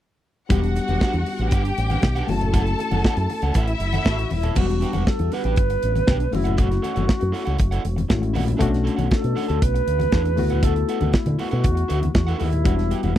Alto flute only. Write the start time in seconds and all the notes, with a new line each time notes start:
4.08 F#4
4.33 E4
4.57 F#4
5.08 A4
5.32 B4
6.34 E4
6.59 F#4
9.13 A4
9.62 B4
10.64 A4
11.14 E4
11.39 F#4
12.15 F#4
12.41 E4